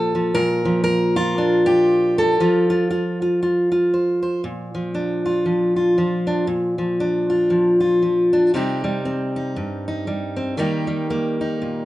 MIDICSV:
0, 0, Header, 1, 2, 480
1, 0, Start_track
1, 0, Key_signature, -2, "major"
1, 0, Tempo, 511509
1, 327, Time_signature, 4, 2, 24, 8
1, 11120, End_track
2, 0, Start_track
2, 0, Title_t, "Steel-string acoustic guitar"
2, 0, Program_c, 0, 25
2, 0, Note_on_c, 0, 46, 75
2, 0, Note_on_c, 0, 53, 46
2, 0, Note_on_c, 0, 69, 91
2, 136, Note_off_c, 0, 53, 0
2, 139, Note_on_c, 0, 53, 45
2, 307, Note_off_c, 0, 46, 0
2, 317, Note_off_c, 0, 69, 0
2, 324, Note_on_c, 0, 70, 99
2, 329, Note_on_c, 0, 46, 75
2, 608, Note_off_c, 0, 53, 0
2, 612, Note_on_c, 0, 53, 64
2, 774, Note_off_c, 0, 70, 0
2, 785, Note_on_c, 0, 70, 98
2, 1091, Note_on_c, 0, 65, 89
2, 1295, Note_on_c, 0, 62, 47
2, 1554, Note_off_c, 0, 70, 0
2, 1558, Note_on_c, 0, 67, 84
2, 2044, Note_off_c, 0, 65, 0
2, 2048, Note_on_c, 0, 69, 79
2, 2221, Note_off_c, 0, 46, 0
2, 2224, Note_off_c, 0, 62, 0
2, 2239, Note_off_c, 0, 67, 0
2, 2251, Note_off_c, 0, 53, 0
2, 2255, Note_on_c, 0, 53, 76
2, 2260, Note_on_c, 0, 65, 52
2, 2522, Note_off_c, 0, 65, 0
2, 2533, Note_on_c, 0, 65, 63
2, 2715, Note_off_c, 0, 65, 0
2, 2726, Note_on_c, 0, 65, 51
2, 3005, Note_off_c, 0, 65, 0
2, 3020, Note_on_c, 0, 65, 43
2, 3203, Note_off_c, 0, 65, 0
2, 3215, Note_on_c, 0, 65, 45
2, 3476, Note_off_c, 0, 65, 0
2, 3487, Note_on_c, 0, 65, 47
2, 3693, Note_on_c, 0, 72, 42
2, 3953, Note_off_c, 0, 72, 0
2, 3965, Note_on_c, 0, 72, 43
2, 4138, Note_off_c, 0, 72, 0
2, 4139, Note_off_c, 0, 65, 0
2, 4162, Note_off_c, 0, 69, 0
2, 4165, Note_on_c, 0, 46, 60
2, 4442, Note_off_c, 0, 53, 0
2, 4453, Note_on_c, 0, 53, 55
2, 4641, Note_on_c, 0, 62, 50
2, 4932, Note_on_c, 0, 65, 48
2, 5108, Note_off_c, 0, 53, 0
2, 5120, Note_on_c, 0, 53, 53
2, 5397, Note_off_c, 0, 65, 0
2, 5408, Note_on_c, 0, 65, 51
2, 5599, Note_off_c, 0, 53, 0
2, 5610, Note_on_c, 0, 53, 53
2, 5871, Note_off_c, 0, 62, 0
2, 5882, Note_on_c, 0, 62, 46
2, 6057, Note_off_c, 0, 62, 0
2, 6060, Note_off_c, 0, 46, 0
2, 6060, Note_off_c, 0, 65, 0
2, 6075, Note_on_c, 0, 46, 67
2, 6353, Note_off_c, 0, 53, 0
2, 6364, Note_on_c, 0, 53, 53
2, 6571, Note_on_c, 0, 62, 53
2, 6847, Note_on_c, 0, 65, 52
2, 7029, Note_off_c, 0, 53, 0
2, 7040, Note_on_c, 0, 53, 53
2, 7312, Note_off_c, 0, 65, 0
2, 7324, Note_on_c, 0, 65, 52
2, 7518, Note_off_c, 0, 53, 0
2, 7529, Note_on_c, 0, 53, 49
2, 7805, Note_off_c, 0, 62, 0
2, 7816, Note_on_c, 0, 62, 49
2, 7976, Note_off_c, 0, 46, 0
2, 7979, Note_off_c, 0, 65, 0
2, 7985, Note_off_c, 0, 62, 0
2, 8007, Note_off_c, 0, 53, 0
2, 8011, Note_on_c, 0, 48, 66
2, 8016, Note_on_c, 0, 55, 55
2, 8025, Note_on_c, 0, 60, 54
2, 8030, Note_on_c, 0, 63, 53
2, 8037, Note_on_c, 0, 67, 59
2, 8290, Note_off_c, 0, 55, 0
2, 8294, Note_on_c, 0, 55, 58
2, 8484, Note_off_c, 0, 60, 0
2, 8495, Note_on_c, 0, 60, 53
2, 8781, Note_off_c, 0, 63, 0
2, 8784, Note_on_c, 0, 63, 51
2, 8969, Note_off_c, 0, 48, 0
2, 8975, Note_on_c, 0, 43, 55
2, 9255, Note_off_c, 0, 63, 0
2, 9269, Note_on_c, 0, 63, 52
2, 9439, Note_off_c, 0, 55, 0
2, 9451, Note_on_c, 0, 55, 51
2, 9715, Note_off_c, 0, 60, 0
2, 9726, Note_on_c, 0, 60, 50
2, 9901, Note_off_c, 0, 60, 0
2, 9904, Note_off_c, 0, 55, 0
2, 9913, Note_off_c, 0, 63, 0
2, 9922, Note_on_c, 0, 51, 66
2, 9927, Note_on_c, 0, 55, 54
2, 9930, Note_off_c, 0, 43, 0
2, 9934, Note_off_c, 0, 67, 0
2, 9934, Note_on_c, 0, 58, 56
2, 9940, Note_on_c, 0, 63, 53
2, 9945, Note_on_c, 0, 67, 60
2, 10190, Note_off_c, 0, 55, 0
2, 10202, Note_on_c, 0, 55, 53
2, 10410, Note_off_c, 0, 58, 0
2, 10419, Note_on_c, 0, 58, 55
2, 10693, Note_off_c, 0, 63, 0
2, 10705, Note_on_c, 0, 63, 50
2, 10900, Note_on_c, 0, 46, 53
2, 11120, Note_off_c, 0, 46, 0
2, 11120, Note_off_c, 0, 51, 0
2, 11120, Note_off_c, 0, 55, 0
2, 11120, Note_off_c, 0, 58, 0
2, 11120, Note_off_c, 0, 63, 0
2, 11120, Note_off_c, 0, 67, 0
2, 11120, End_track
0, 0, End_of_file